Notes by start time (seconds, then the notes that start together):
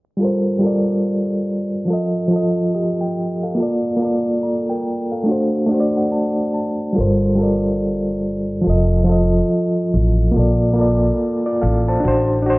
0.17 G3 F4 A4
0.23 A#4 C5
0.59 G3 F4 A4
0.65 A#4 D5
1.85 F3 F4
1.90 A4 D#5
2.28 F3 F4
2.33 A4 D#5
2.75 G4 D#5
3.01 G5
3.43 A4 F5
3.55 A#3 F4
3.60 A4 D5
3.97 A#3 F4
4.02 A4 D5
4.43 D5 A#5
4.70 A#4 G5
5.12 A4 F5
5.24 A3 D4
5.29 F#4 C5
5.66 A3 D4 D5
5.71 F#4 C5
5.80 D5
5.97 F#5
6.12 A5
6.54 A5
6.93 G3 F4 A4
6.98 G1 A#4 C5
7.35 G3 F4 A4
7.41 A#4 D5
8.62 F3 F4
8.67 F1 A4 D#5
9.04 F3 F4
9.09 A4 D#5
9.94 A1
10.31 A#3 F4
10.36 A#1 A4 D5
10.73 A#3 F4
10.79 A4 D5
11.46 F4 D5
11.61 A1 A4 F5
11.88 C5 A5
12.00 D4 F#4
12.05 A1 C5
12.42 D4
12.46 F#4 C5